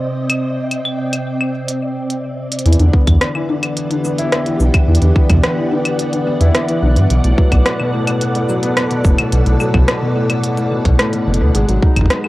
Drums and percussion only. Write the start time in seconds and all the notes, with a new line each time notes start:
0.30 closed hi-hat, claves
0.71 closed hi-hat, claves
0.85 claves
1.13 closed hi-hat, claves
1.41 claves
1.68 closed hi-hat
2.10 closed hi-hat
2.52 closed hi-hat
2.59 closed hi-hat
2.66 closed hi-hat
2.73 closed hi-hat
2.80 closed hi-hat
2.93 kick
3.07 kick, closed hi-hat, claves
3.21 cross-stick, closed hi-hat
3.35 claves
3.63 closed hi-hat, claves
3.77 closed hi-hat
3.91 closed hi-hat
4.05 shaker
4.18 closed hi-hat
4.32 cross-stick, closed hi-hat
4.46 closed hi-hat
4.60 shaker
4.74 kick, closed hi-hat, claves
4.95 closed hi-hat
5.02 closed hi-hat
5.16 kick
5.30 kick, closed hi-hat, mid tom, claves
5.43 cross-stick, closed hi-hat
5.85 closed hi-hat, claves
5.99 closed hi-hat
6.13 closed hi-hat
6.41 closed hi-hat
6.55 cross-stick, closed hi-hat
6.69 closed hi-hat
6.96 closed hi-hat
7.10 closed hi-hat
7.24 closed hi-hat
7.38 kick
7.52 kick, closed hi-hat, claves
7.66 cross-stick, closed hi-hat
7.80 claves
8.07 closed hi-hat, claves
8.21 closed hi-hat
8.35 closed hi-hat
8.49 shaker
8.63 closed hi-hat
8.77 cross-stick, closed hi-hat
8.91 closed hi-hat
9.05 kick, shaker
9.18 closed hi-hat, claves
9.32 closed hi-hat
9.46 closed hi-hat
9.60 claves, shaker
9.74 kick, mid tom, claves
9.88 cross-stick, closed hi-hat
10.30 closed hi-hat, claves
10.44 closed hi-hat
10.57 closed hi-hat
10.85 kick, closed hi-hat
10.99 cross-stick, closed hi-hat
11.13 closed hi-hat
11.34 closed hi-hat
11.55 closed hi-hat
11.69 closed hi-hat
11.82 kick
11.96 kick, closed hi-hat, claves
12.01 kick
12.06 kick
12.10 cross-stick, closed hi-hat
12.24 claves